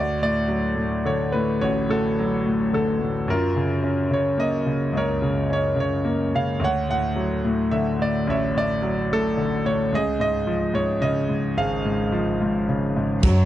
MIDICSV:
0, 0, Header, 1, 4, 480
1, 0, Start_track
1, 0, Tempo, 553506
1, 1401, Time_signature, 3, 2, 24, 8
1, 11666, End_track
2, 0, Start_track
2, 0, Title_t, "Grand piano"
2, 0, Program_c, 0, 0
2, 0, Note_on_c, 0, 38, 46
2, 0, Note_on_c, 0, 66, 55
2, 0, Note_on_c, 0, 74, 78
2, 129, Control_c, 0, 64, 127
2, 186, Note_off_c, 0, 74, 0
2, 193, Note_on_c, 0, 45, 38
2, 199, Note_on_c, 0, 74, 71
2, 420, Note_on_c, 0, 54, 39
2, 646, Note_off_c, 0, 45, 0
2, 646, Note_off_c, 0, 74, 0
2, 652, Note_off_c, 0, 66, 0
2, 659, Note_on_c, 0, 45, 42
2, 914, Note_on_c, 0, 50, 44
2, 923, Note_on_c, 0, 73, 60
2, 1148, Note_on_c, 0, 71, 62
2, 1151, Note_off_c, 0, 45, 0
2, 1164, Note_on_c, 0, 45, 41
2, 1169, Note_off_c, 0, 73, 0
2, 1364, Note_off_c, 0, 54, 0
2, 1369, Note_off_c, 0, 38, 0
2, 1400, Note_on_c, 0, 73, 72
2, 1401, Note_on_c, 0, 33, 51
2, 1403, Note_off_c, 0, 71, 0
2, 1422, Note_on_c, 0, 66, 46
2, 1627, Note_off_c, 0, 45, 0
2, 1640, Note_on_c, 0, 45, 40
2, 1649, Note_off_c, 0, 73, 0
2, 1652, Note_on_c, 0, 69, 69
2, 1658, Note_off_c, 0, 66, 0
2, 1671, Note_on_c, 0, 66, 48
2, 1852, Note_off_c, 0, 50, 0
2, 1898, Note_on_c, 0, 54, 46
2, 2118, Note_off_c, 0, 45, 0
2, 2131, Note_on_c, 0, 45, 42
2, 2344, Note_off_c, 0, 66, 0
2, 2366, Note_off_c, 0, 69, 0
2, 2371, Note_on_c, 0, 50, 40
2, 2379, Note_on_c, 0, 69, 61
2, 2598, Note_off_c, 0, 45, 0
2, 2611, Note_on_c, 0, 45, 38
2, 2708, Note_off_c, 0, 69, 0
2, 2810, Note_off_c, 0, 33, 0
2, 2824, Note_off_c, 0, 54, 0
2, 2834, Note_off_c, 0, 50, 0
2, 2841, Note_off_c, 0, 45, 0
2, 2843, Note_on_c, 0, 42, 54
2, 2855, Control_c, 0, 64, 0
2, 2864, Note_on_c, 0, 70, 66
2, 2878, Note_on_c, 0, 65, 46
2, 3002, Control_c, 0, 64, 127
2, 3088, Note_on_c, 0, 49, 42
2, 3327, Note_on_c, 0, 61, 43
2, 3547, Note_off_c, 0, 65, 0
2, 3550, Note_off_c, 0, 49, 0
2, 3563, Note_on_c, 0, 49, 39
2, 3586, Note_on_c, 0, 73, 60
2, 3596, Note_off_c, 0, 70, 0
2, 3796, Note_on_c, 0, 58, 42
2, 3814, Note_on_c, 0, 75, 66
2, 3823, Note_off_c, 0, 73, 0
2, 4030, Note_off_c, 0, 49, 0
2, 4043, Note_on_c, 0, 49, 39
2, 4250, Note_off_c, 0, 42, 0
2, 4258, Note_off_c, 0, 61, 0
2, 4276, Note_on_c, 0, 37, 48
2, 4304, Note_off_c, 0, 75, 0
2, 4312, Note_on_c, 0, 73, 69
2, 4315, Note_on_c, 0, 70, 53
2, 4514, Note_off_c, 0, 49, 0
2, 4527, Note_on_c, 0, 49, 38
2, 4732, Note_off_c, 0, 58, 0
2, 4747, Note_off_c, 0, 73, 0
2, 4770, Note_on_c, 0, 61, 41
2, 4795, Note_on_c, 0, 73, 68
2, 4979, Note_off_c, 0, 49, 0
2, 4986, Note_off_c, 0, 70, 0
2, 4992, Note_on_c, 0, 49, 39
2, 5020, Note_off_c, 0, 73, 0
2, 5033, Note_on_c, 0, 73, 68
2, 5244, Note_on_c, 0, 58, 44
2, 5468, Note_off_c, 0, 73, 0
2, 5493, Note_off_c, 0, 49, 0
2, 5506, Note_on_c, 0, 49, 41
2, 5512, Note_on_c, 0, 77, 65
2, 5688, Note_off_c, 0, 37, 0
2, 5701, Note_off_c, 0, 61, 0
2, 5712, Note_off_c, 0, 58, 0
2, 5720, Note_on_c, 0, 38, 51
2, 5730, Note_off_c, 0, 49, 0
2, 5740, Control_c, 0, 64, 0
2, 5747, Note_off_c, 0, 77, 0
2, 5757, Note_on_c, 0, 73, 60
2, 5762, Note_on_c, 0, 78, 81
2, 5873, Control_c, 0, 64, 127
2, 5973, Note_on_c, 0, 45, 40
2, 5976, Note_off_c, 0, 78, 0
2, 5989, Note_on_c, 0, 78, 77
2, 6210, Note_on_c, 0, 54, 45
2, 6426, Note_off_c, 0, 78, 0
2, 6428, Note_off_c, 0, 73, 0
2, 6446, Note_off_c, 0, 45, 0
2, 6459, Note_on_c, 0, 45, 44
2, 6690, Note_on_c, 0, 76, 66
2, 6696, Note_on_c, 0, 50, 44
2, 6912, Note_off_c, 0, 76, 0
2, 6918, Note_off_c, 0, 45, 0
2, 6931, Note_on_c, 0, 45, 41
2, 6954, Note_on_c, 0, 74, 61
2, 7130, Note_off_c, 0, 38, 0
2, 7140, Note_off_c, 0, 54, 0
2, 7173, Note_on_c, 0, 33, 50
2, 7188, Note_off_c, 0, 74, 0
2, 7198, Note_on_c, 0, 73, 51
2, 7199, Note_on_c, 0, 76, 69
2, 7399, Note_off_c, 0, 45, 0
2, 7412, Note_on_c, 0, 45, 37
2, 7430, Note_off_c, 0, 76, 0
2, 7437, Note_on_c, 0, 74, 80
2, 7623, Note_off_c, 0, 50, 0
2, 7652, Note_on_c, 0, 54, 44
2, 7867, Note_off_c, 0, 73, 0
2, 7891, Note_off_c, 0, 45, 0
2, 7904, Note_on_c, 0, 45, 45
2, 7916, Note_off_c, 0, 74, 0
2, 7917, Note_on_c, 0, 69, 78
2, 8128, Note_on_c, 0, 50, 41
2, 8362, Note_off_c, 0, 45, 0
2, 8375, Note_on_c, 0, 45, 40
2, 8378, Note_on_c, 0, 73, 70
2, 8395, Note_off_c, 0, 69, 0
2, 8573, Note_off_c, 0, 33, 0
2, 8579, Note_off_c, 0, 54, 0
2, 8591, Note_off_c, 0, 50, 0
2, 8603, Note_off_c, 0, 45, 0
2, 8606, Note_on_c, 0, 37, 53
2, 8618, Note_off_c, 0, 73, 0
2, 8618, Control_c, 0, 64, 0
2, 8622, Note_on_c, 0, 68, 56
2, 8631, Note_on_c, 0, 75, 77
2, 8764, Control_c, 0, 64, 127
2, 8842, Note_off_c, 0, 75, 0
2, 8844, Note_on_c, 0, 44, 42
2, 8855, Note_on_c, 0, 75, 75
2, 9079, Note_on_c, 0, 53, 46
2, 9296, Note_off_c, 0, 68, 0
2, 9300, Note_off_c, 0, 44, 0
2, 9313, Note_on_c, 0, 44, 46
2, 9320, Note_on_c, 0, 73, 69
2, 9342, Note_off_c, 0, 75, 0
2, 9551, Note_on_c, 0, 49, 49
2, 9555, Note_on_c, 0, 75, 72
2, 9568, Note_off_c, 0, 73, 0
2, 9778, Note_off_c, 0, 44, 0
2, 9791, Note_on_c, 0, 44, 37
2, 10005, Note_off_c, 0, 37, 0
2, 10009, Note_off_c, 0, 53, 0
2, 10037, Note_on_c, 0, 32, 49
2, 10037, Note_on_c, 0, 68, 50
2, 10039, Note_on_c, 0, 77, 73
2, 10051, Note_off_c, 0, 75, 0
2, 10266, Note_off_c, 0, 44, 0
2, 10279, Note_on_c, 0, 44, 40
2, 10484, Note_off_c, 0, 49, 0
2, 10513, Note_on_c, 0, 53, 45
2, 10753, Note_off_c, 0, 44, 0
2, 10766, Note_on_c, 0, 44, 46
2, 10960, Note_off_c, 0, 68, 0
2, 10961, Note_off_c, 0, 77, 0
2, 11003, Note_on_c, 0, 49, 45
2, 11230, Note_off_c, 0, 44, 0
2, 11243, Note_on_c, 0, 44, 40
2, 11439, Note_off_c, 0, 32, 0
2, 11444, Note_off_c, 0, 53, 0
2, 11464, Note_off_c, 0, 49, 0
2, 11472, Note_off_c, 0, 44, 0
2, 11482, Note_on_c, 0, 54, 57
2, 11485, Control_c, 0, 64, 0
2, 11622, Control_c, 0, 64, 127
2, 11666, Note_off_c, 0, 54, 0
2, 11666, End_track
3, 0, Start_track
3, 0, Title_t, "Cello"
3, 0, Program_c, 1, 42
3, 11475, Note_on_c, 1, 42, 90
3, 11666, Note_off_c, 1, 42, 0
3, 11666, End_track
4, 0, Start_track
4, 0, Title_t, "Drums"
4, 11472, Note_on_c, 9, 49, 73
4, 11476, Note_on_c, 9, 36, 77
4, 11559, Note_off_c, 9, 49, 0
4, 11563, Note_off_c, 9, 36, 0
4, 11666, End_track
0, 0, End_of_file